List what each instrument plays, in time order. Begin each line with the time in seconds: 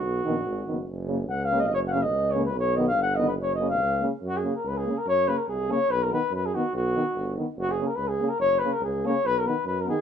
Already playing: flugelhorn F#4
0.03 tuba B1
0.24 tuba A#1, euphonium D#3, french horn B3
0.46 tuba G#1
0.67 tuba F#1, euphonium D#3, french horn B3
0.88 tuba F#1
1.07 euphonium C#3, french horn A#3
1.29 tuba C#2, flugelhorn F#5
1.44 flugelhorn F5
1.51 euphonium C#3, french horn A#3
1.59 flugelhorn D#5 F5
1.67 tuba F#1, flugelhorn D#5
1.74 flugelhorn C#5
1.88 flugelhorn F5 F#5
1.93 euphonium C#3, french horn A#3
2.02 flugelhorn D#5
2.12 tuba C#2
2.31 euphonium C#3, flugelhorn C#5
2.35 french horn A#3
2.45 flugelhorn B4
2.55 tuba B1
2.60 flugelhorn C#5
2.76 euphonium D#3, french horn B3, flugelhorn D#5
2.88 flugelhorn F5
2.96 tuba G1
3.02 flugelhorn F#5
3.16 euphonium D#3, french horn B3, flugelhorn D#5
3.28 flugelhorn B4
3.39 tuba F#1, flugelhorn C#5
3.55 flugelhorn D#5
3.60 euphonium C#3, french horn A#3
3.69 flugelhorn F5
3.80 tuba C#2
4.00 euphonium C#3, french horn A#3
4.22 tuba F#2
4.27 flugelhorn F#4
4.37 flugelhorn G#4
4.44 euphonium C#3, french horn A#3
4.56 flugelhorn A#4
4.64 tuba C#2, flugelhorn B4
4.78 flugelhorn G#4
4.85 euphonium C#3, french horn A#3
4.98 flugelhorn A#4
5.05 tuba F#2, flugelhorn C#5
5.28 euphonium C#3, french horn A#3, flugelhorn B4
5.38 flugelhorn A#4
5.48 tuba C2, flugelhorn G#4
5.69 euphonium C#3, french horn A#3, flugelhorn C#5
5.88 tuba B1, flugelhorn B4
6.03 flugelhorn A#4
6.11 euphonium D#3, french horn B3, flugelhorn B4
6.30 tuba F#2
6.35 flugelhorn B4
6.46 flugelhorn G#4
6.55 euphonium D#3, french horn B3, flugelhorn F#4
6.73 tuba B1, flugelhorn F#4
6.95 euphonium D#3, french horn B3
7.14 tuba G1
7.37 euphonium D#3, french horn B3
7.56 tuba F#1, flugelhorn F#4
7.71 flugelhorn G#4
7.79 euphonium C#3, french horn A#3
7.87 flugelhorn A#4
7.95 tuba C#2, flugelhorn B4
8.08 flugelhorn G#4
8.20 euphonium C#3, french horn A#3
8.29 flugelhorn A#4
8.38 tuba F#1, flugelhorn C#5
8.59 french horn A#3, flugelhorn B4
8.64 euphonium C#3
8.73 flugelhorn A#4
8.81 tuba C#2, flugelhorn G#4
9.05 euphonium C#3, french horn A#3, flugelhorn C#5
9.24 tuba B1, flugelhorn B4
9.39 flugelhorn A#4
9.46 euphonium D#3, french horn B3, flugelhorn B4
9.65 tuba F#2, flugelhorn B4
9.81 flugelhorn A#4
9.86 euphonium D#3, french horn B3, flugelhorn G#4